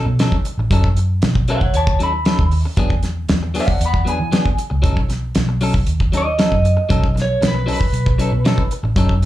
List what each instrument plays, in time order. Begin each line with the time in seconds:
0.06 fingered electric bass B2, muted clean electric guitar stroke
0.19 clean electric guitar F#3 C#4 D#4 A4, snare, closed hi-hat
0.32 kick
0.45 muted clean electric guitar stroke, closed hi-hat
0.58 fingered electric bass A1, muted clean electric guitar stroke
0.71 fingered electric bass F#2, clean electric guitar F#3 C#4 D#4 A4, kick, closed hi-hat
0.84 kick
0.97 muted clean electric guitar stroke, closed hi-hat
1.22 fingered electric bass B1, muted clean electric guitar stroke, snare, closed hi-hat
1.35 muted clean electric guitar stroke, kick
1.48 clean electric guitar F#3 C#4 D#4 A4 C#5 F#5, closed hi-hat
1.61 muted clean electric guitar stroke, kick
1.74 fingered electric bass D#2, clean electric guitar C#5 A5, closed hi-hat
1.87 muted clean electric guitar stroke, kick
1.99 clean electric guitar F#3 C#4 D#4 A4, closed hi-hat
2.03 clean electric guitar B5
2.13 muted clean electric guitar stroke
2.25 clean electric guitar F#3 C#4 D#4 A4, snare, closed hi-hat
2.39 fingered electric bass D#2, kick
2.51 muted clean electric guitar stroke, open hi-hat
2.65 muted clean electric guitar stroke
2.77 fingered electric bass E2, clean electric guitar F#3 B3 D4 G#4, kick, closed hi-hat
2.90 kick
3.03 muted clean electric guitar stroke, snare, closed hi-hat
3.29 fingered electric bass E2, muted clean electric guitar stroke, snare, closed hi-hat
3.43 muted clean electric guitar stroke
3.54 clean electric guitar F#3 B3 D4 G#4, open hi-hat
3.60 clean electric guitar D5 F#5
3.67 muted clean electric guitar stroke, kick
3.81 fingered electric bass E2, closed hi-hat
3.85 clean electric guitar F#5 B5
3.93 muted clean electric guitar stroke, kick
4.05 clean electric guitar F#3 B3 D4 G#4, closed hi-hat
4.10 clean electric guitar G#5
4.19 fingered electric bass E3, muted clean electric guitar stroke
4.32 clean electric guitar F#3 B3 D4 G#4, snare, closed hi-hat
4.46 kick
4.58 muted clean electric guitar stroke, closed hi-hat
4.70 fingered electric bass C#2, muted clean electric guitar stroke
4.82 fingered electric bass B1, clean electric guitar F#3 C#4 D#4 A4, kick, closed hi-hat
4.97 kick
5.09 muted clean electric guitar stroke, snare, closed hi-hat
5.35 fingered electric bass B1, muted clean electric guitar stroke, snare, closed hi-hat
5.49 muted clean electric guitar stroke
5.61 clean electric guitar F#3 C#4 D#4 A4, open hi-hat
5.74 muted clean electric guitar stroke, kick
5.86 fingered electric bass D#2, closed hi-hat
6.00 muted clean electric guitar stroke, kick
6.12 clean electric guitar F#3 C#4 D#4 A4, closed hi-hat
6.17 clean electric guitar D#5
6.26 muted clean electric guitar stroke
6.38 clean electric guitar F#3 C#4 D#4 A4, snare, closed hi-hat
6.51 fingered electric bass F#2, kick
6.64 muted clean electric guitar stroke, closed hi-hat
6.77 muted clean electric guitar stroke
6.89 fingered electric bass B1, clean electric guitar F#3 C#4 D#4 A4, kick, closed hi-hat
7.04 kick
7.15 muted clean electric guitar stroke, snare, closed hi-hat
7.22 clean electric guitar C#5
7.41 fingered electric bass B1, muted clean electric guitar stroke, snare, closed hi-hat
7.47 clean electric guitar B4
7.54 muted clean electric guitar stroke
7.66 clean electric guitar F#3 C#4 D#4 A4, open hi-hat
7.73 clean electric guitar B4
7.80 muted clean electric guitar stroke, kick
7.93 fingered electric bass B1, closed hi-hat
8.06 muted clean electric guitar stroke, kick
8.18 clean electric guitar F#3 C#4 D#4 A4, closed hi-hat
8.32 fingered electric bass B2, muted clean electric guitar stroke
8.45 clean electric guitar F#3 C#4 D#4 A4, snare, closed hi-hat
8.58 kick
8.71 muted clean electric guitar stroke, closed hi-hat
8.83 fingered electric bass A1, muted clean electric guitar stroke
8.96 fingered electric bass F#2, clean electric guitar F#3 C#4 D#4 A4, kick, closed hi-hat
9.09 kick